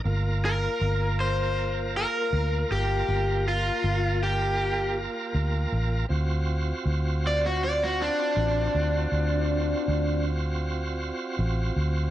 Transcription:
<<
  \new Staff \with { instrumentName = "Overdriven electric guitar" } { \time 4/4 \key d \minor \tempo 4 = 79 r8 bes'4 c''4 bes'4 g'8~ | g'8 f'4 g'4 r4. | r4. d''16 fis'16 d''16 fis'16 d'4.~ | d'4. r2 r8 | }
  \new Staff \with { instrumentName = "Tonewheel organ" } { \time 4/4 \key d \minor <bes f' bes'>1~ | <bes f' bes'>1 | <c' eis' fis'>1~ | <c' eis' fis'>1 | }
  \new Staff \with { instrumentName = "Fingered electric bass" } { \clef bass \time 4/4 \key d \minor g,,4 g,,2 d,8 g,,8 | g,,4 g,,2 d,8 a,,8 | d,4 d,2 a,,8 d,8 | d,4 d,2 a,,8 d,8 | }
>>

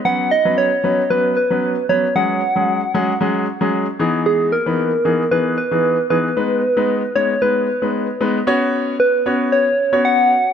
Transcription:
<<
  \new Staff \with { instrumentName = "Soft synth lead" } { \time 4/4 \key b \major \tempo 4 = 114 fis''8 dis''8 cis''4 b'8 b'4 cis''8 | fis''2. r4 | gis'8 ais'4. b'8 b'4 b'8~ | b'4. cis''8 b'4. r8 |
r4 b'4 cis''4 fis''4 | }
  \new Staff \with { instrumentName = "Grand piano" } { \time 4/4 \key b \major <fis b cis' b'>8 r16 <fis b cis' b'>8 r16 <fis b cis' b'>16 r16 <fis b cis' b'>8 r16 <fis b cis' b'>8 r16 <fis b cis' b'>16 r16 | <fis gis cis' gis'>8 r16 <fis gis cis' gis'>8 r16 <fis gis cis' gis'>16 r16 <fis gis cis' gis'>8 r16 <fis gis cis' gis'>8 r16 <e b dis' gis'>8~ | <e b dis' gis'>8 r16 <e b dis' b'>8 r16 <e b dis' gis'>16 r16 <e b dis' gis'>8 r16 <e b dis' gis'>8 r16 <e b dis' gis'>16 r16 | <gis b dis' b'>8 r16 <gis b dis' b'>8 r16 <gis b dis' cis''>16 r16 <gis b dis' b'>8 r16 <gis b dis' b'>8 r16 <gis b dis' b'>16 r16 |
<b cis' fis' cis''>4 r8 <b cis' fis' cis''>8. r8 <b cis' fis' cis''>8. r8 | }
>>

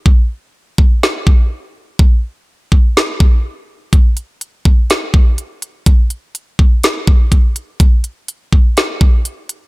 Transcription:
\new DrumStaff \with { instrumentName = "Drums" } \drummode { \time 4/4 \tempo 4 = 124 bd4 r8 bd8 sn8 bd8 r4 | bd4 r8 bd8 sn8 bd8 r4 | <hh bd>8 hh8 hh8 bd8 <hh sn>8 bd8 hh8 hh8 | <hh bd>8 hh8 hh8 bd8 <hh sn>8 bd8 <hh bd>8 hh8 |
<hh bd>8 hh8 hh8 bd8 <hh sn>8 bd8 hh8 hh8 | }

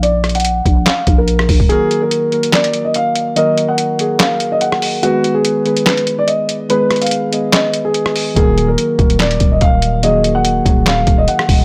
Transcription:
<<
  \new Staff \with { instrumentName = "Grand piano" } { \time 4/4 \key ees \minor \tempo 4 = 144 d''8. ges''4~ ges''16 f''8. bes'4~ bes'16 | aes'8. bes'4~ bes'16 d''8. ees''16 f''4 | ees''8. ges''4~ ges''16 f''8. ees''16 ges''4 | ges'8. aes'4~ aes'16 ces''8. d''16 ees''4 |
ces''8. f''4~ f''16 ees''8. aes'4~ aes'16 | aes'8. bes'4~ bes'16 d''8. ees''16 f''4 | ees''8. ges''4~ ges''16 f''8. ees''16 ges''4 | }
  \new Staff \with { instrumentName = "Synth keys" } { \time 4/4 \key ees \minor r1 | <ees ges bes ges' bes'>4 r8 <ees ges bes ges' bes'>4. r4 | <ees ges bes ges' bes'>4 r8 <ees ges bes ges' aes'>4. r4 | <ees aes ces' aes' ces''>4 r8 <ees aes ces' aes' ces''>4. r4 |
<ees aes ces' aes' ces''>4 r8 <ees aes ces' aes' ees''>4. r4 | <ees ges bes ges' bes'>4 r8 <ees ges bes ges' bes'>4. r4 | <ees ges bes ges' aes'>4 r8 <ees ges bes ges' aes'>4. r4 | }
  \new Staff \with { instrumentName = "808-style bass" } { \clef bass \time 4/4 \key ees \minor bes,,4. bes,,8 r8 bes,,4 bes,,16 ees,,16 | r1 | r1 | r1 |
r1 | ees,,4 r8 ees,,4 ees,,8 ees,,4~ | ees,,4. ees,,4 ees,,8 r8 ees,,8 | }
  \new DrumStaff \with { instrumentName = "Drums" } \drummode { \time 4/4 hh8 <hh ss>32 hh32 hh32 hh32 hh8 <hh bd>8 <hc hh sn>8 <hh bd>8 hh16 ss16 <hho bd>16 bd16 | hh8 hh8 hh8 hh16 hh16 <hc hh sn>16 hh16 hh8 hh8 hh8 | hh8 hh8 hh8 hh8 <hc hh sn>8 hh8 hh16 ss16 hho8 | hh8 hh8 hh8 hh16 hh16 <hc hh sn>16 hh16 hh8 hh8 hh8 |
hh8 <hh ss>32 hh32 hh32 hh32 hh8 hh8 <hc hh sn>8 hh8 hh16 ss16 hho8 | <hh bd>8 hh8 hh8 <hh bd>16 hh16 <hc hh sn>16 hh16 <hh bd>8 <hh bd>8 hh8 | hh8 hh8 hh8 <hh bd>8 <hc hh sn>8 <hh bd>8 hh16 ss16 <hho bd>8 | }
>>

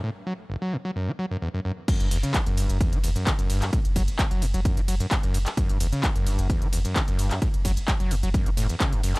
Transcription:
<<
  \new Staff \with { instrumentName = "Acid bass" } { \clef bass \time 4/4 \key fis \phrygian \tempo 4 = 130 a,16 r16 fis16 r16 fis,,16 fis16 g,16 fis16 fis,16 a16 fis16 fis,16 e,16 fis,16 fis,16 r16 | fis,16 g,16 e,16 cis16 e16 fis,16 g,16 fis,16 r16 fis16 e,16 fis,16 e16 fis,16 g,16 fis,16 | a,16 r16 fis16 r16 fis,,16 fis16 g,16 fis16 fis,16 a16 fis16 fis,16 fis,,16 fis,16 g,16 r16 | fis,16 g,16 e,16 cis16 e16 fis,16 g,16 fis,16 e,16 fis16 e,16 fis,16 e16 fis,16 g,16 fis,16 |
a,16 r16 fis16 r16 fis,,16 fis16 g,16 fis16 fis,16 a16 a,16 e,16 cis16 fis,16 fis,16 r16 | }
  \new Staff \with { instrumentName = "Sub bass" } { \clef bass \time 4/4 \key fis \phrygian r1 | r16 fis,,16 fis,,16 r8 fis,,16 fis,,16 fis,,16 r16 fis,,16 fis,,16 r8 fis,,16 fis,,16 r16 | r16 fis,,16 fis,,16 r8 fis,,16 fis,,16 fis,,16 r16 fis,,16 fis,,16 r8 fis,,16 fis,,16 r16 | r16 fis,,16 fis,,16 r8 fis,,16 fis,,16 fis,,16 r16 fis,,16 fis,,16 r8 fis,,16 fis,,16 r16 |
r16 fis,,16 fis,,16 r8 fis,,16 fis,,16 fis,,16 r16 fis,,16 fis,,16 r8 fis,,16 fis,,16 r16 | }
  \new DrumStaff \with { instrumentName = "Drums" } \drummode { \time 4/4 r4 r4 r4 r4 | <cymc hh bd cymr>16 hh16 <hho cymr>16 hh16 <hc hh bd cymr>16 hh16 <hho cymr>16 hh16 <hh bd cymr>16 hh16 <hho cymr>16 hh16 <hc hh bd cymr>16 hh16 <hho cymr>16 <hc hh>16 | <hh bd cymr>16 hh16 <hho bd cymr>16 hh16 <hc hh bd cymr>16 hh16 <hho cymr>16 hh16 <hh bd cymr>16 hh16 <hho cymr>16 hh16 <hc hh bd cymr>16 hh16 <hho cymr>16 <hc hh>16 | <hh bd cymr>16 hh16 <hho cymr>16 hh16 <hc hh bd cymr>16 hh16 <hho cymr>16 hh16 <hh bd cymr>16 hh16 <hho cymr>16 hh16 <hc hh bd cymr>16 hh16 <hho cymr>16 <hc hh>16 |
<hh bd cymr>16 hh16 <hho bd cymr>16 hh16 <hc hh bd cymr>16 hh16 <hho cymr>16 hh16 <hh bd cymr>16 hh16 <hho cymr>16 hh16 <hc hh bd cymr>16 hh16 <hho cymr>16 <hc hh>16 | }
>>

